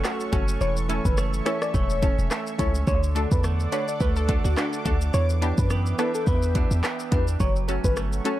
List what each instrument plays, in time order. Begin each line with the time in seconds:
Already playing: clean electric guitar F#3 C#4, analog synth pad A4 C#5 F#5 C#6, impact
0.04 clean electric guitar A3, synth pluck F#4, cross-stick, clap, shaker
0.20 shaker
0.32 808-style bass F#1, synth stab A3 C#4 F#4 A4, clean electric guitar C#4, kick, closed hi-hat, shaker
0.48 shaker
0.61 808-style bass E1, clean electric guitar E3, soft synth lead C#5, analog synth pad E5, shaker
0.77 shaker
0.89 synth stab A3 C#4 E4 A4, clean electric guitar C#4, closed hi-hat, shaker
1.05 808-style bass F#1, soft synth lead B4, kick, shaker
1.18 clean electric guitar A3, cross-stick, shaker
1.34 shaker
1.45 synth stab A3 C#4 E4 A4, clean electric guitar C#4, soft synth lead C#5, cross-stick, closed hi-hat, shaker
1.62 soft synth lead D5, cross-stick, shaker
1.74 808-style bass E1, clean electric guitar A3, soft synth lead C#5, kick, shaker
1.90 shaker
2.02 synth stab A3 C#4 E4 A4, clean electric guitar C#4, kick, closed hi-hat, shaker
2.19 808-style bass E1, shaker
2.31 clean electric guitar A3, cross-stick, clap, shaker
2.47 shaker
2.58 808-style bass C#2, synth stab A3 C#4 E4 A4, clean electric guitar C#4, soft synth lead C#5, kick, closed hi-hat, shaker
2.75 shaker
2.87 808-style bass D2, clean electric guitar D3, analog synth pad A4 D5 F#5 D6, soft synth lead C#5, kick, shaker
3.03 shaker
3.15 synth stab A3 D4 F#4 A4, clean electric guitar D4, closed hi-hat, shaker
3.32 808-style bass E2, soft synth lead B4, kick, shaker
3.44 clean electric guitar A3, cross-stick, shaker
3.60 shaker
3.72 synth stab A3 D4 F#4 B4, clean electric guitar D4, soft synth lead C#5, closed hi-hat, shaker
3.88 soft synth lead D5, shaker
4.01 808-style bass D2, clean electric guitar A3, synth pluck B4, kick, shaker
4.16 synth pluck A4, shaker
4.28 synth stab A3 D4 F#4 A4, clean electric guitar D4, kick, closed hi-hat, shaker
4.44 808-style bass D2, synth pluck F#4, shaker
4.57 clean electric guitar A3, synth pluck D4, cross-stick, clap, shaker
4.73 shaker
4.85 808-style bass D2, synth stab A3 D4 F#4 A4, clean electric guitar D4, kick, closed hi-hat, shaker
5.01 shaker
5.14 808-style bass E2, clean electric guitar E3, analog synth pad B4 E5 G5, soft synth lead C#5, shaker
5.30 shaker
5.42 synth stab B3 D4 E4 G4, clean electric guitar D4, closed hi-hat, shaker
5.58 808-style bass F#2, soft synth lead B4, kick, shaker
5.70 clean electric guitar B3, cross-stick, shaker
5.86 shaker
5.98 synth stab B3 D4 E4 A4, clean electric guitar D4, soft synth lead B4, cross-stick, closed hi-hat, shaker
6.15 soft synth lead A4, shaker
6.27 808-style bass E2, clean electric guitar B3, soft synth lead B4, kick, shaker
6.43 shaker
6.55 synth stab B3 D4 E4 F#4, clean electric guitar D4, kick, closed hi-hat, shaker
6.71 808-style bass E2, shaker
6.84 clean electric guitar B3, cross-stick, clap, shaker
7.00 shaker
7.11 808-style bass E2, synth stab B3 D4 E4 G4, clean electric guitar D4, soft synth lead B4, kick, closed hi-hat, shaker
7.28 shaker
7.40 808-style bass F#1, clean electric guitar F#3, analog synth pad A4 C#5 F#5 C#6, soft synth lead C#5, kick, shaker
7.56 shaker
7.68 synth stab A3 C#4 F#4 A4, clean electric guitar C#4, closed hi-hat, shaker
7.84 808-style bass G1, soft synth lead B4, kick, shaker
7.97 clean electric guitar A3, cross-stick, shaker
8.13 shaker
8.24 synth stab A3 C#4 F#4 A4, clean electric guitar C#4, soft synth lead C#5, closed hi-hat, shaker